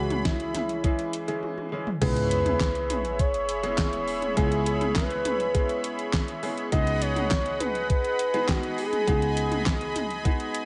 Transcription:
Already playing: picked electric bass C#2, grand piano E3 G#3 C#4 E4 G#4, analog synth lead F#4, analog synth pad G#4 C#5 E5 B5
0.10 closed hi-hat, mid tom
0.25 analog synth lead E4, kick, snare, closed hi-hat
0.40 closed hi-hat
0.55 snare, closed hi-hat, mid tom
0.69 closed hi-hat
0.84 grand piano E3 G#3 C#4 E4 G#4, kick, closed hi-hat
0.99 closed hi-hat
1.13 closed hi-hat
1.28 grand piano E3 G#3 C#4 E4 G#4, closed hi-hat
1.43 high tom
1.58 high tom
1.72 grand piano E3 G#3 C#4 E4 G#4
1.87 mid tom
2.01 picked electric bass C#2, grand piano G#3 B3 C#4 E4 G#4, analog synth pad G#4 C#5 E5 B5, analog synth lead B4, kick, closed hi-hat, crash, sub drop
2.16 closed hi-hat
2.31 closed hi-hat
2.46 closed hi-hat, mid tom
2.60 kick, snare, clap, closed hi-hat
2.75 closed hi-hat
2.90 closed hi-hat, mid tom
3.05 closed hi-hat
3.19 analog synth lead C#5, kick, closed hi-hat
3.34 closed hi-hat
3.49 closed hi-hat
3.63 grand piano G#3 B3 C#4 E4 G#4, closed hi-hat
3.78 kick, snare, clap, closed hi-hat
3.93 closed hi-hat
4.08 open hi-hat
4.22 closed hi-hat, mid tom
4.37 picked electric bass C#2, grand piano G#3 B3 C#4 E4 G#4, analog synth lead G#4, kick, closed hi-hat
4.52 closed hi-hat
4.66 analog synth lead G#4, closed hi-hat
4.81 closed hi-hat, mid tom
4.96 analog synth lead B4, kick, snare, clap, closed hi-hat
5.10 closed hi-hat
5.25 closed hi-hat, mid tom
5.40 closed hi-hat
5.54 grand piano G#3 B3 C#4 E4 G#4, kick, closed hi-hat
5.69 closed hi-hat
5.84 closed hi-hat
5.99 closed hi-hat
6.13 kick, snare, clap, closed hi-hat
6.28 closed hi-hat
6.43 grand piano G#3 B3 C#4 E4 G#4, open hi-hat
6.58 closed hi-hat
6.72 picked electric bass C#2, grand piano G#3 B3 D#4 F#4 G#4, analog synth pad G#4 D#5 F#5 B5, analog synth lead D#5, kick, closed hi-hat
6.87 closed hi-hat
7.01 analog synth lead C#5, closed hi-hat
7.16 closed hi-hat, mid tom
7.31 kick, snare, clap, closed hi-hat
7.46 closed hi-hat
7.60 analog synth lead B4, closed hi-hat, mid tom
7.75 closed hi-hat
7.90 analog synth lead B4, kick, closed hi-hat
8.04 closed hi-hat
8.19 closed hi-hat
8.34 grand piano G#3 B3 D#4 F#4 G#4, closed hi-hat
8.49 analog synth lead F#4, kick, snare, clap, closed hi-hat
8.63 closed hi-hat
8.78 analog synth lead G#4, open hi-hat
8.93 closed hi-hat, mid tom
9.07 picked electric bass C#2, grand piano G#3 B3 D#4 F#4 G#4, analog synth pad G#5, kick, closed hi-hat
9.22 closed hi-hat
9.37 closed hi-hat
9.52 closed hi-hat, mid tom
9.66 kick, snare, clap, closed hi-hat
9.81 closed hi-hat
9.96 closed hi-hat, mid tom
10.10 closed hi-hat
10.25 grand piano G#3 B3 D#4 F#4 G#4, kick, closed hi-hat
10.40 closed hi-hat
10.54 closed hi-hat

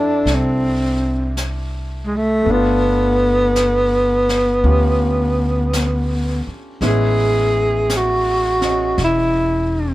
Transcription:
Already playing: upright bass F2, grand piano A3 C4 D4 E4 G4 A4, tenor saxophone D4
0.26 upright bass C2, brush sweep, snare
0.35 tenor saxophone C4
1.37 brush sweep, snare, hi-hat pedal
2.06 tenor saxophone G#3
2.16 tenor saxophone A3
2.42 upright bass G1, grand piano A3 B3, brush sweep
2.49 tenor saxophone B3, grand piano D4
2.53 grand piano F4
3.56 brush sweep, snare, hi-hat pedal
4.29 snare
4.64 upright bass D2, grand piano C#4 F4 G4, brush sweep
5.73 brush sweep, snare, hi-hat pedal
6.47 muted upright bass stroke
6.81 upright bass A1, grand piano G#3 B3 C#4 E4, brush sweep, snare
6.87 tenor saxophone G#4
7.90 brush sweep, snare, hi-hat pedal
7.97 tenor saxophone F#4
8.61 grand piano C#4 D#5, snare
8.98 upright bass E1, brush sweep, snare
9.04 tenor saxophone E4

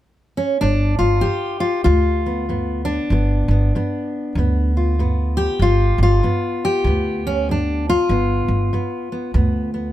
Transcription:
0.37 steel-string acoustic guitar C#4
0.61 upright bass G1, steel-string acoustic guitar G2 D4
0.99 upright bass G1, steel-string acoustic guitar F4
1.21 steel-string acoustic guitar G4
1.25 steel-string acoustic guitar G2
1.60 steel-string acoustic guitar F4
1.84 upright bass D2, steel-string acoustic guitar G2 F4
2.26 steel-string acoustic guitar B3
2.49 steel-string acoustic guitar G2 B3
2.85 steel-string acoustic guitar D4
3.10 upright bass G1, steel-string acoustic guitar G2 B3
3.48 upright bass G1, steel-string acoustic guitar B3
3.75 steel-string acoustic guitar G2 B3
4.35 upright bass D2, steel-string acoustic guitar G2 B3
4.77 steel-string acoustic guitar F4
4.99 steel-string acoustic guitar G2 B3
5.37 steel-string acoustic guitar G4
5.59 upright bass G1, steel-string acoustic guitar G2 F4
5.98 upright bass G1
6.03 steel-string acoustic guitar F4
6.23 steel-string acoustic guitar G2 B3
6.65 steel-string acoustic guitar G4
6.84 upright bass D2, steel-string acoustic guitar G2 B3
7.27 steel-string acoustic guitar C#4
7.49 steel-string acoustic guitar G2 D4
7.89 steel-string acoustic guitar F4
8.09 upright bass G1, steel-string acoustic guitar G2 B3
8.48 upright bass G1
8.73 steel-string acoustic guitar G2 B3
9.12 steel-string acoustic guitar B3
9.34 upright bass D2, steel-string acoustic guitar G2 B3
9.74 steel-string acoustic guitar B3

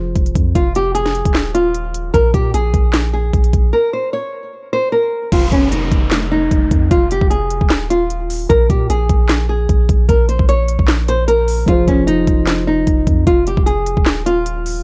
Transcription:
Already playing: 808-style bass F1, felt piano F3 F4 G#4 C5
0.16 808-style bass F1, kick, closed hi-hat
0.26 closed hi-hat
0.35 808-style bass F2, kick, closed hi-hat
0.55 808-style bass F1, nylon-string guitar F4, kick, closed hi-hat
0.75 nylon-string guitar G4, closed hi-hat
0.95 nylon-string guitar G#4, closed hi-hat
1.06 snare
1.15 closed hi-hat
1.25 808-style bass D#1, kick, closed hi-hat
1.34 snare, clap
1.55 nylon-string guitar F4, closed hi-hat
1.74 closed hi-hat
1.94 closed hi-hat
2.14 808-style bass A#1, nylon-string guitar A#4, kick, closed hi-hat
2.34 808-style bass A#2, nylon-string guitar G4, kick, closed hi-hat
2.54 808-style bass A#1, nylon-string guitar G#4, closed hi-hat
2.74 808-style bass A#1, kick, closed hi-hat
2.93 snare, clap, closed hi-hat
3.13 nylon-string guitar G#4
3.33 808-style bass A#1, kick, closed hi-hat
3.44 closed hi-hat
3.53 808-style bass A#1, kick, closed hi-hat
3.73 nylon-string guitar A#4
3.93 nylon-string guitar C5
4.13 nylon-string guitar C#5
4.73 nylon-string guitar C5
4.92 nylon-string guitar A#4
5.32 808-style bass F1, nylon-string guitar F4, kick, closed hi-hat, crash, downlifter
5.52 808-style bass F1, nylon-string guitar C#4, kick, closed hi-hat
5.71 808-style bass F1, nylon-string guitar D#4, closed hi-hat
5.92 808-style bass F1, kick, closed hi-hat
6.11 snare, clap, closed hi-hat
6.32 nylon-string guitar D#4
6.51 808-style bass F1, kick, closed hi-hat
6.71 808-style bass F2, kick, closed hi-hat
6.91 808-style bass F1, nylon-string guitar F4, kick, closed hi-hat
7.11 nylon-string guitar G4, closed hi-hat
7.21 808-style bass F1, kick
7.30 nylon-string guitar G#4, closed hi-hat
7.50 closed hi-hat
7.61 808-style bass D#1, kick
7.70 snare, clap
7.90 nylon-string guitar F4, closed hi-hat
8.10 closed hi-hat
8.30 open hi-hat
8.49 808-style bass A#1, nylon-string guitar A#4, kick, closed hi-hat
8.70 808-style bass A#2, nylon-string guitar G4, kick, closed hi-hat
8.90 808-style bass A#1, nylon-string guitar G#4, closed hi-hat
9.09 808-style bass A#1, kick, closed hi-hat
9.29 snare, clap, closed hi-hat
9.49 nylon-string guitar G#4
9.69 808-style bass A#1, kick, closed hi-hat
9.89 808-style bass A#1, kick, closed hi-hat
10.09 808-style bass A#1, nylon-string guitar A#4, kick, closed hi-hat
10.29 nylon-string guitar C5, closed hi-hat
10.39 808-style bass A#1, kick
10.49 nylon-string guitar C#5, closed hi-hat
10.68 closed hi-hat
10.79 808-style bass A#1, kick
10.88 snare, clap
11.08 nylon-string guitar C5, closed hi-hat
11.28 nylon-string guitar A#4, closed hi-hat
11.48 open hi-hat
11.66 808-style bass F1, felt piano F3 F4 G#4 C5, nylon-string guitar F4, kick, closed hi-hat
11.88 808-style bass F1, nylon-string guitar C#4, kick, closed hi-hat
12.07 808-style bass F1, nylon-string guitar D#4, closed hi-hat
12.27 808-style bass F1, kick, closed hi-hat
12.47 snare, clap, closed hi-hat
12.67 nylon-string guitar D#4
12.87 808-style bass F1, kick, closed hi-hat
13.07 808-style bass F2, kick, closed hi-hat
13.27 808-style bass F1, nylon-string guitar F4, kick, closed hi-hat
13.47 nylon-string guitar G4, closed hi-hat
13.57 808-style bass F1, kick
13.66 nylon-string guitar G#4, closed hi-hat
13.86 closed hi-hat
13.97 808-style bass D#1, kick
14.06 snare, clap
14.26 nylon-string guitar F4, closed hi-hat
14.46 closed hi-hat
14.66 open hi-hat

